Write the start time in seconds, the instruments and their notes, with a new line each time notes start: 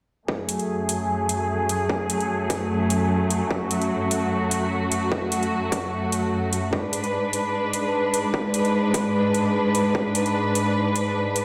0.28 string section F#2 F#3 A3 G#4, kick
0.49 closed hi-hat
0.59 closed hi-hat
0.89 closed hi-hat
1.29 closed hi-hat
1.69 closed hi-hat
1.90 kick
2.10 closed hi-hat
2.21 closed hi-hat
2.50 kick, closed hi-hat
2.90 closed hi-hat
3.30 closed hi-hat
3.50 string section F#4, kick
3.71 closed hi-hat
3.82 closed hi-hat
4.11 closed hi-hat
4.51 closed hi-hat
4.92 closed hi-hat
5.12 kick
5.32 closed hi-hat
5.43 closed hi-hat
5.72 kick, closed hi-hat
6.12 closed hi-hat
6.53 closed hi-hat
6.73 string section G#2 G#3 D4 B4, kick
6.93 closed hi-hat
7.04 closed hi-hat
7.33 closed hi-hat
7.73 closed hi-hat
8.14 closed hi-hat
8.34 kick
8.54 closed hi-hat
8.65 closed hi-hat
8.94 kick, closed hi-hat
9.34 closed hi-hat
9.75 closed hi-hat
9.95 kick
10.15 closed hi-hat
10.26 closed hi-hat
10.55 closed hi-hat
10.96 closed hi-hat
11.36 closed hi-hat